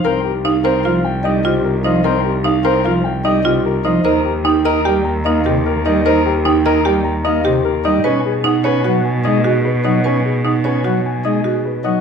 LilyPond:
<<
  \new Staff \with { instrumentName = "Grand piano" } { \time 5/4 \key c \phrygian \tempo 4 = 150 bes'8 g'8 f''8 bes'8 f''8 g''8 ees''8 g'8 bes'8 ees''8 | bes'8 g'8 f''8 bes'8 f''8 g''8 ees''8 g'8 bes'8 ees''8 | bes'8 g'8 g''8 bes'8 g''8 bes''8 ees''8 g'8 bes'8 ees''8 | bes'8 g'8 g''8 bes'8 g''8 bes''8 ees''8 g'8 bes'8 ees''8 |
b'8 gis'8 fis''8 b'8 fis''8 gis''8 dis''8 gis'8 b'8 dis''8 | b'8 gis'8 fis''8 b'8 fis''8 gis''8 dis''8 gis'8 b'8 dis''8 | }
  \new Staff \with { instrumentName = "Marimba" } { \time 5/4 \key c \phrygian bes'8 r8 ees'8 c''8 f'8 r8 ees'8 f'8 r8 ees'8 | bes'8 r8 ees'8 c''8 f'8 r8 ees'8 f'8 r8 ees'8 | c''8 r8 ees'8 ees''8 g'8 r8 ees'8 g'8 r8 ees'8 | c''8 r8 ees'8 ees''8 g'8 r8 ees'8 g'8 r8 ees'8 |
b'8 r8 dis'8 des''8 fis'8 r8 dis'8 fis'8 r8 dis'8 | b'8 r8 dis'8 des''8 fis'8 r8 dis'8 fis'8 r8 dis'8 | }
  \new Staff \with { instrumentName = "Pipe organ" } { \clef bass \time 5/4 \key c \phrygian c'8 r4 c'8 f8 r8 g8 c8 r8 f8 | c'8 r4 c'8 f8 r8 g8 c8 r8 f8 | ees'8 r4 ees'8 g8 r8 bes8 c8 r8 g8 | ees'8 r4 ees'8 g8 r8 bes8 c8 r8 g8 |
des'8 r4 des'8 fis8 r8 gis8 r4 fis8 | des'8 r4 des'8 fis8 r8 gis8 r4 fis8 | }
  \new Staff \with { instrumentName = "Cello" } { \clef bass \time 5/4 \key c \phrygian c,1~ c,4~ | c,1~ c,4 | ees,1~ ees,4~ | ees,1~ ees,4 |
b,1~ b,4~ | b,1~ b,4 | }
>>